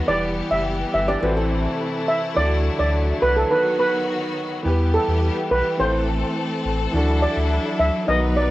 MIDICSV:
0, 0, Header, 1, 6, 480
1, 0, Start_track
1, 0, Key_signature, 1, "minor"
1, 0, Tempo, 571429
1, 67, Time_signature, 4, 2, 24, 8
1, 7145, End_track
2, 0, Start_track
2, 0, Title_t, "Steel pan"
2, 0, Program_c, 0, 114
2, 67, Note_on_c, 0, 74, 113
2, 153, Note_off_c, 0, 74, 0
2, 427, Note_on_c, 0, 76, 85
2, 513, Note_off_c, 0, 76, 0
2, 788, Note_on_c, 0, 76, 76
2, 874, Note_off_c, 0, 76, 0
2, 907, Note_on_c, 0, 74, 80
2, 993, Note_off_c, 0, 74, 0
2, 1748, Note_on_c, 0, 76, 78
2, 1833, Note_off_c, 0, 76, 0
2, 1987, Note_on_c, 0, 74, 109
2, 2073, Note_off_c, 0, 74, 0
2, 2347, Note_on_c, 0, 74, 80
2, 2433, Note_off_c, 0, 74, 0
2, 2707, Note_on_c, 0, 71, 86
2, 2793, Note_off_c, 0, 71, 0
2, 2828, Note_on_c, 0, 69, 74
2, 2914, Note_off_c, 0, 69, 0
2, 2948, Note_on_c, 0, 71, 80
2, 3034, Note_off_c, 0, 71, 0
2, 3188, Note_on_c, 0, 71, 84
2, 3274, Note_off_c, 0, 71, 0
2, 4149, Note_on_c, 0, 69, 78
2, 4234, Note_off_c, 0, 69, 0
2, 4629, Note_on_c, 0, 71, 90
2, 4714, Note_off_c, 0, 71, 0
2, 4868, Note_on_c, 0, 72, 98
2, 5206, Note_off_c, 0, 72, 0
2, 6068, Note_on_c, 0, 74, 75
2, 6154, Note_off_c, 0, 74, 0
2, 6549, Note_on_c, 0, 76, 80
2, 6634, Note_off_c, 0, 76, 0
2, 6788, Note_on_c, 0, 75, 84
2, 6874, Note_off_c, 0, 75, 0
2, 7026, Note_on_c, 0, 74, 82
2, 7113, Note_off_c, 0, 74, 0
2, 7145, End_track
3, 0, Start_track
3, 0, Title_t, "Nylon-string guitar"
3, 0, Program_c, 1, 24
3, 908, Note_on_c, 1, 67, 80
3, 912, Note_on_c, 1, 62, 70
3, 1021, Note_off_c, 1, 67, 0
3, 1024, Note_off_c, 1, 62, 0
3, 1028, Note_on_c, 1, 71, 86
3, 1033, Note_on_c, 1, 66, 70
3, 1142, Note_off_c, 1, 71, 0
3, 1144, Note_off_c, 1, 66, 0
3, 1147, Note_on_c, 1, 69, 77
3, 1153, Note_on_c, 1, 64, 65
3, 1833, Note_off_c, 1, 69, 0
3, 1836, Note_off_c, 1, 64, 0
3, 7145, End_track
4, 0, Start_track
4, 0, Title_t, "Grand piano"
4, 0, Program_c, 2, 0
4, 0, Control_c, 2, 64, 127
4, 0, Note_on_c, 2, 66, 63
4, 48, Note_on_c, 2, 52, 66
4, 63, Note_on_c, 2, 59, 63
4, 75, Note_on_c, 2, 67, 63
4, 78, Control_c, 2, 64, 0
4, 85, Note_off_c, 2, 66, 0
4, 89, Note_on_c, 2, 71, 74
4, 205, Control_c, 2, 64, 127
4, 995, Note_off_c, 2, 52, 0
4, 1005, Note_off_c, 2, 59, 0
4, 1008, Note_on_c, 2, 52, 68
4, 1012, Note_off_c, 2, 67, 0
4, 1019, Note_off_c, 2, 71, 0
4, 1022, Note_on_c, 2, 60, 66
4, 1034, Note_on_c, 2, 69, 62
4, 1035, Control_c, 2, 64, 0
4, 1048, Note_on_c, 2, 72, 77
4, 1184, Control_c, 2, 64, 127
4, 1956, Note_off_c, 2, 52, 0
4, 1965, Note_off_c, 2, 60, 0
4, 1969, Note_on_c, 2, 52, 68
4, 1971, Note_off_c, 2, 69, 0
4, 1978, Note_off_c, 2, 72, 0
4, 1981, Note_on_c, 2, 62, 58
4, 1994, Note_on_c, 2, 66, 60
4, 1997, Control_c, 2, 64, 0
4, 2007, Note_on_c, 2, 69, 77
4, 2162, Control_c, 2, 64, 127
4, 2918, Note_off_c, 2, 52, 0
4, 2925, Note_off_c, 2, 62, 0
4, 2927, Note_on_c, 2, 51, 70
4, 2931, Note_off_c, 2, 66, 0
4, 2938, Note_off_c, 2, 69, 0
4, 2940, Note_on_c, 2, 59, 65
4, 2953, Note_on_c, 2, 66, 62
4, 2956, Control_c, 2, 64, 0
4, 2966, Note_on_c, 2, 71, 76
4, 3097, Control_c, 2, 64, 127
4, 3878, Note_off_c, 2, 51, 0
4, 3884, Note_off_c, 2, 59, 0
4, 3886, Note_on_c, 2, 52, 79
4, 3891, Note_off_c, 2, 66, 0
4, 3898, Note_off_c, 2, 71, 0
4, 3900, Note_on_c, 2, 59, 74
4, 3913, Note_on_c, 2, 67, 71
4, 3919, Control_c, 2, 64, 0
4, 3926, Note_on_c, 2, 71, 85
4, 4055, Control_c, 2, 64, 127
4, 4835, Note_off_c, 2, 52, 0
4, 4844, Note_off_c, 2, 59, 0
4, 4848, Note_on_c, 2, 52, 68
4, 4851, Note_off_c, 2, 67, 0
4, 4857, Note_off_c, 2, 71, 0
4, 4861, Note_on_c, 2, 60, 61
4, 4874, Note_on_c, 2, 69, 64
4, 4876, Control_c, 2, 64, 0
4, 4886, Note_on_c, 2, 72, 76
4, 5006, Control_c, 2, 64, 127
4, 5796, Note_off_c, 2, 52, 0
4, 5805, Note_off_c, 2, 60, 0
4, 5809, Note_on_c, 2, 52, 79
4, 5811, Note_off_c, 2, 69, 0
4, 5818, Note_off_c, 2, 72, 0
4, 5822, Note_on_c, 2, 62, 70
4, 5835, Note_on_c, 2, 66, 72
4, 5839, Control_c, 2, 64, 0
4, 5848, Note_on_c, 2, 69, 86
4, 5998, Control_c, 2, 64, 127
4, 6758, Note_off_c, 2, 52, 0
4, 6765, Note_off_c, 2, 62, 0
4, 6769, Note_on_c, 2, 51, 67
4, 6772, Note_off_c, 2, 66, 0
4, 6778, Note_off_c, 2, 69, 0
4, 6782, Note_on_c, 2, 59, 64
4, 6795, Note_on_c, 2, 66, 61
4, 6797, Control_c, 2, 64, 0
4, 6807, Note_on_c, 2, 71, 79
4, 6963, Control_c, 2, 64, 127
4, 7145, Note_off_c, 2, 51, 0
4, 7145, Note_off_c, 2, 59, 0
4, 7145, Note_off_c, 2, 66, 0
4, 7145, Note_off_c, 2, 71, 0
4, 7145, End_track
5, 0, Start_track
5, 0, Title_t, "String section"
5, 0, Program_c, 3, 48
5, 0, Note_on_c, 3, 59, 74
5, 68, Note_on_c, 3, 52, 85
5, 68, Note_on_c, 3, 55, 77
5, 68, Note_on_c, 3, 67, 85
5, 1008, Note_off_c, 3, 59, 0
5, 1018, Note_off_c, 3, 55, 0
5, 1018, Note_off_c, 3, 67, 0
5, 1026, Note_on_c, 3, 57, 76
5, 1026, Note_on_c, 3, 64, 92
5, 1027, Note_on_c, 3, 48, 78
5, 1968, Note_off_c, 3, 52, 0
5, 1977, Note_off_c, 3, 48, 0
5, 1987, Note_on_c, 3, 54, 74
5, 1989, Note_on_c, 3, 50, 79
5, 2927, Note_off_c, 3, 57, 0
5, 2927, Note_off_c, 3, 64, 0
5, 2938, Note_off_c, 3, 50, 0
5, 2945, Note_on_c, 3, 51, 78
5, 2945, Note_on_c, 3, 59, 73
5, 2946, Note_on_c, 3, 66, 89
5, 3888, Note_off_c, 3, 54, 0
5, 3896, Note_off_c, 3, 51, 0
5, 3897, Note_off_c, 3, 59, 0
5, 3897, Note_off_c, 3, 66, 0
5, 3906, Note_on_c, 3, 52, 85
5, 3906, Note_on_c, 3, 67, 89
5, 3907, Note_on_c, 3, 55, 75
5, 3907, Note_on_c, 3, 59, 72
5, 4857, Note_off_c, 3, 55, 0
5, 4857, Note_off_c, 3, 59, 0
5, 4857, Note_off_c, 3, 67, 0
5, 4865, Note_on_c, 3, 69, 90
5, 4866, Note_on_c, 3, 57, 73
5, 4866, Note_on_c, 3, 60, 72
5, 5807, Note_off_c, 3, 52, 0
5, 5817, Note_off_c, 3, 57, 0
5, 5817, Note_off_c, 3, 60, 0
5, 5826, Note_on_c, 3, 54, 82
5, 5826, Note_on_c, 3, 62, 74
5, 5827, Note_on_c, 3, 64, 75
5, 6767, Note_off_c, 3, 69, 0
5, 6777, Note_off_c, 3, 62, 0
5, 6777, Note_off_c, 3, 64, 0
5, 6787, Note_on_c, 3, 59, 77
5, 6787, Note_on_c, 3, 71, 92
5, 6788, Note_on_c, 3, 63, 74
5, 7145, Note_off_c, 3, 54, 0
5, 7145, Note_off_c, 3, 59, 0
5, 7145, Note_off_c, 3, 63, 0
5, 7145, Note_off_c, 3, 71, 0
5, 7145, End_track
6, 0, Start_track
6, 0, Title_t, "Sub bass"
6, 0, Program_c, 4, 38
6, 66, Note_on_c, 4, 28, 105
6, 345, Note_off_c, 4, 28, 0
6, 426, Note_on_c, 4, 30, 88
6, 706, Note_off_c, 4, 30, 0
6, 788, Note_on_c, 4, 31, 99
6, 974, Note_off_c, 4, 31, 0
6, 1027, Note_on_c, 4, 33, 113
6, 1400, Note_off_c, 4, 33, 0
6, 1988, Note_on_c, 4, 38, 111
6, 2267, Note_off_c, 4, 38, 0
6, 2347, Note_on_c, 4, 38, 91
6, 2627, Note_off_c, 4, 38, 0
6, 2708, Note_on_c, 4, 36, 101
6, 2893, Note_off_c, 4, 36, 0
6, 3907, Note_on_c, 4, 40, 109
6, 4186, Note_off_c, 4, 40, 0
6, 4267, Note_on_c, 4, 40, 105
6, 4453, Note_off_c, 4, 40, 0
6, 4626, Note_on_c, 4, 35, 93
6, 4719, Note_off_c, 4, 35, 0
6, 4867, Note_on_c, 4, 33, 105
6, 5239, Note_off_c, 4, 33, 0
6, 5586, Note_on_c, 4, 33, 89
6, 5773, Note_off_c, 4, 33, 0
6, 5827, Note_on_c, 4, 38, 108
6, 6106, Note_off_c, 4, 38, 0
6, 6188, Note_on_c, 4, 38, 96
6, 6374, Note_off_c, 4, 38, 0
6, 6547, Note_on_c, 4, 38, 100
6, 6640, Note_off_c, 4, 38, 0
6, 6787, Note_on_c, 4, 35, 108
6, 7145, Note_off_c, 4, 35, 0
6, 7145, End_track
0, 0, End_of_file